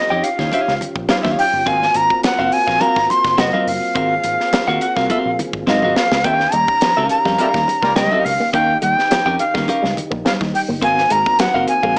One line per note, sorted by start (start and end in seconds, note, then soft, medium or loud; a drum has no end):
0.00 1.63 C#4 medium
0.00 6.21 F4 medium
0.00 1.63 G4 medium
0.00 0.25 D#5 medium
0.10 0.21 F2 medium
0.10 0.28 D#4 medium
0.10 0.28 G4 medium
0.10 0.28 C#5 medium
0.10 0.27 G5 medium
0.24 0.83 F5 medium
0.24 closed hi-hat medium
0.39 0.49 D#2 medium
0.39 0.51 D#4 soft
0.39 0.52 G4 medium
0.39 0.52 C#5 medium
0.39 0.52 F5 medium
0.39 kick medium
0.39 snare soft
0.39 low conga medium
0.52 0.73 D#4 medium
0.52 0.73 G4 medium
0.52 0.73 C#5 medium
0.52 0.74 F5 medium
0.52 closed hi-hat medium
0.52 muted conga medium
0.68 0.78 C#2 medium
0.68 snare soft
0.81 closed hi-hat medium
0.81 muted conga medium
0.81 low conga medium
0.96 1.06 A#1 medium
0.96 kick loud
1.09 1.24 D#4 medium
1.09 1.24 G4 medium
1.09 1.23 C#5 medium
1.09 1.16 F5 medium
1.09 1.22 F5 medium
1.09 muted picked electric bass stroke soft
1.09 snare medium
1.09 closed hi-hat medium
1.09 high conga medium
1.23 1.35 D#2 medium
1.23 1.44 D#4 medium
1.23 1.44 G4 medium
1.23 1.44 C#5 medium
1.23 1.44 F5 medium
1.23 kick medium
1.23 snare soft
1.23 high conga medium
1.39 1.69 G5 loud
1.39 open hi-hat medium
1.53 1.63 G1 medium
1.66 1.88 G#1 loud
1.66 6.20 A#3 medium
1.66 1.85 C4 medium
1.66 6.21 C4 medium
1.66 1.85 F#4 medium
1.66 1.85 A#4 medium
1.66 1.86 F5 medium
1.66 1.98 G#5 loud
1.66 kick medium
1.66 closed hi-hat medium
1.82 snare soft
1.94 2.06 G#1 medium
1.94 2.24 A#5 loud
1.94 closed hi-hat medium
2.10 kick medium
2.23 2.55 F#5 medium
2.23 snare loud
2.23 closed hi-hat medium
2.23 high conga medium
2.39 2.49 F#1 medium
2.39 2.57 C4 medium
2.39 2.57 F#4 medium
2.39 2.56 A#4 medium
2.39 2.56 F5 medium
2.52 2.82 G#5 medium
2.52 open hi-hat medium
2.67 2.78 A#1 medium
2.67 2.79 C4 medium
2.67 2.79 F#4 medium
2.67 2.80 A#4 medium
2.67 2.80 F5 medium
2.67 kick medium
2.67 snare soft
2.80 2.99 C4 medium
2.80 2.99 F#4 medium
2.80 3.00 A#4 medium
2.80 3.00 F5 medium
2.80 3.12 A#5 loud
2.80 closed hi-hat medium
2.80 muted conga medium
2.96 3.06 G#1 medium
2.96 kick medium
2.96 snare soft
3.10 3.41 C6 medium
3.10 closed hi-hat medium
3.10 muted conga soft
3.25 3.35 F#1 medium
3.25 kick loud
3.25 snare soft
3.38 3.50 F#1 medium
3.38 3.53 C4 medium
3.38 3.53 F#4 medium
3.38 3.53 A#4 medium
3.38 3.70 D#5 medium
3.38 3.53 F#5 medium
3.38 snare medium
3.38 closed hi-hat medium
3.38 high conga medium
3.53 3.71 C4 medium
3.53 3.71 F#4 medium
3.53 3.71 A#4 medium
3.53 3.70 F5 medium
3.53 high conga medium
3.67 3.79 F#1 medium
3.67 4.83 F5 loud
3.67 open hi-hat medium
3.95 4.17 G#1 loud
3.95 4.14 C4 medium
3.95 4.14 F#4 medium
3.95 6.22 G#4 medium
3.95 4.14 A#4 medium
3.95 4.15 F5 medium
3.95 kick loud
3.95 closed hi-hat medium
4.24 4.36 G#1 medium
4.24 closed hi-hat medium
4.40 snare soft
4.53 snare loud
4.53 closed hi-hat medium
4.53 high conga medium
4.68 4.78 D#2 medium
4.68 4.86 C4 medium
4.68 4.86 F#4 medium
4.68 4.85 A#4 medium
4.68 4.85 F#5 medium
4.81 4.97 F#5 medium
4.81 closed hi-hat medium
4.96 5.07 C2 medium
4.96 5.08 C4 medium
4.96 5.09 F#4 soft
4.96 5.10 A#4 medium
4.96 5.40 F5 medium
4.96 5.10 F5 medium
4.96 kick medium
4.96 snare soft
5.10 5.30 C4 medium
5.10 5.31 F#4 medium
5.10 5.31 A#4 medium
5.10 5.31 F5 medium
5.10 kick medium
5.10 closed hi-hat medium
5.10 muted conga medium
5.26 5.36 A#1 loud
5.39 closed hi-hat medium
5.39 muted conga soft
5.39 low conga medium
5.53 5.64 G#1 medium
5.53 kick loud
5.67 5.79 G#2 loud
5.67 5.82 C4 medium
5.67 5.82 F#4 medium
5.67 5.83 A#4 medium
5.67 5.98 D#5 medium
5.67 5.82 F5 medium
5.67 snare soft
5.67 high conga medium
5.82 5.93 G#1 medium
5.82 6.01 C4 medium
5.82 6.00 F#4 medium
5.82 6.00 A#4 medium
5.82 6.00 F5 medium
5.82 high conga medium
5.96 6.26 F5 medium
5.96 snare medium
6.12 6.25 C#2 medium
6.12 snare medium
6.24 6.46 D#2 loud
6.24 11.99 D#3 medium
6.24 6.36 A#3 medium
6.24 8.51 C#4 medium
6.24 6.45 C#4 medium
6.24 10.79 G4 medium
6.24 6.46 G4 medium
6.24 6.46 A#4 medium
6.24 6.46 F5 medium
6.24 6.55 G5 loud
6.24 kick loud
6.24 closed hi-hat medium
6.40 snare soft
6.52 6.65 D#2 loud
6.52 6.65 G3 medium
6.52 7.10 A#5 loud
6.52 closed hi-hat medium
6.68 muted clean electric guitar stroke soft
6.68 kick medium
6.81 6.93 F3 medium
6.81 snare loud
6.81 closed hi-hat loud
6.81 high conga medium
6.97 7.08 C#2 medium
6.97 7.17 C#4 medium
6.97 7.17 G4 medium
6.97 7.17 A#4 medium
6.97 7.16 F5 medium
7.09 7.98 A#5 medium
7.09 muted clean electric guitar stroke soft
7.09 closed hi-hat medium
7.25 7.36 F2 medium
7.25 7.36 G3 medium
7.25 7.38 C#4 medium
7.25 7.39 G4 medium
7.25 7.39 A#4 medium
7.25 7.38 F5 medium
7.25 kick medium
7.25 snare soft
7.38 7.48 G3 medium
7.38 7.48 A#3 medium
7.38 7.60 C#4 medium
7.38 7.48 F4 medium
7.38 7.60 G4 medium
7.38 7.48 A#4 medium
7.38 7.60 A#4 medium
7.38 7.61 F5 medium
7.38 closed hi-hat medium
7.38 muted conga medium
7.54 7.64 D#2 medium
7.54 7.65 G3 medium
7.54 kick medium
7.54 snare soft
7.68 muted clean electric guitar stroke soft
7.68 closed hi-hat medium
7.68 muted conga medium
7.82 7.93 C#2 medium
7.82 7.91 G3 medium
7.82 7.93 A#3 medium
7.82 7.91 A#3 medium
7.82 7.91 F4 medium
7.82 7.91 A#4 medium
7.82 kick medium
7.82 snare soft
7.96 8.08 C#2 loud
7.96 8.08 G3 medium
7.96 8.11 C#4 medium
7.96 8.11 G4 medium
7.96 8.11 A#4 medium
7.96 8.27 D#5 medium
7.96 8.11 G5 medium
7.96 snare loud
7.96 closed hi-hat medium
7.96 high conga medium
8.11 8.32 C#4 medium
8.11 8.32 G4 medium
8.11 8.31 A#4 medium
8.11 8.31 F5 medium
8.11 high conga medium
8.25 8.37 C#2 medium
8.25 8.53 F5 medium
8.25 muted clean electric guitar stroke soft
8.25 open hi-hat medium
8.40 8.50 A#3 medium
8.53 8.75 D#2 loud
8.53 8.65 A#3 medium
8.53 8.72 C#4 medium
8.53 10.80 D#4 medium
8.53 8.72 G4 medium
8.53 8.73 A#4 medium
8.53 8.73 F5 medium
8.53 8.80 G5 loud
8.53 kick loud
8.53 closed hi-hat medium
8.53 muted conga soft
8.82 8.94 D#2 medium
8.82 8.94 G3 medium
8.82 9.35 G5 loud
8.82 closed hi-hat medium
8.97 muted clean electric guitar stroke soft
8.97 snare soft
9.10 9.22 F3 medium
9.10 snare loud
9.10 closed hi-hat loud
9.10 high conga medium
9.26 9.36 F2 medium
9.26 9.44 C#4 medium
9.26 9.44 G4 medium
9.26 9.43 A#4 medium
9.26 9.43 G5 medium
9.39 9.94 F5 medium
9.39 muted clean electric guitar stroke soft
9.39 closed hi-hat medium
9.54 9.65 D#2 medium
9.54 9.65 G3 medium
9.54 9.67 C#4 medium
9.54 9.67 G4 medium
9.54 9.68 A#4 medium
9.54 9.68 F5 medium
9.54 kick medium
9.54 snare soft
9.54 low conga medium
9.68 9.86 C#4 medium
9.68 9.87 G4 medium
9.68 9.87 A#4 medium
9.68 9.87 F5 loud
9.68 closed hi-hat medium
9.68 muted conga medium
9.82 9.94 C#2 medium
9.82 9.93 G3 medium
9.82 snare soft
9.96 muted clean electric guitar stroke soft
9.96 closed hi-hat medium
9.96 muted conga soft
9.96 low conga medium
10.11 10.22 A#1 medium
10.11 10.21 A#3 medium
10.11 kick loud
10.25 10.37 G3 medium
10.25 10.32 F5 medium
10.25 muted picked electric bass stroke soft
10.25 snare loud
10.25 closed hi-hat medium
10.25 high conga medium
10.41 10.51 D#2 medium
10.41 kick medium
10.41 snare soft
10.41 high conga medium
10.54 10.61 G5 medium
10.54 muted clean electric guitar stroke soft
10.54 open hi-hat medium
10.68 10.79 G1 medium
10.68 10.79 A#3 medium
10.82 11.04 G#1 loud
10.82 10.94 A#3 medium
10.82 11.99 A#3 medium
10.82 11.00 C4 medium
10.82 11.99 C4 medium
10.82 11.01 F#4 medium
10.82 11.99 F#4 medium
10.82 11.01 A#4 medium
10.82 11.02 F5 medium
10.82 11.13 G#5 loud
10.82 kick loud
10.82 closed hi-hat medium
10.98 snare soft
11.10 11.23 G#1 loud
11.10 11.22 G#3 medium
11.10 11.41 A#5 loud
11.10 closed hi-hat medium
11.26 muted clean electric guitar stroke soft
11.26 kick loud
11.39 11.51 F#3 medium
11.39 11.68 F#5 medium
11.39 snare loud
11.39 closed hi-hat loud
11.39 high conga medium
11.54 11.65 F#1 medium
11.54 11.73 C4 medium
11.54 11.72 F#4 medium
11.54 11.72 A#4 medium
11.54 11.72 F5 medium
11.68 11.98 G#5 medium
11.68 muted clean electric guitar stroke soft
11.68 closed hi-hat medium
11.83 11.94 A#1 medium
11.83 11.94 G#3 medium
11.83 11.95 C4 soft
11.83 11.96 F#4 medium
11.83 11.97 A#4 medium
11.83 11.96 F5 medium
11.83 kick medium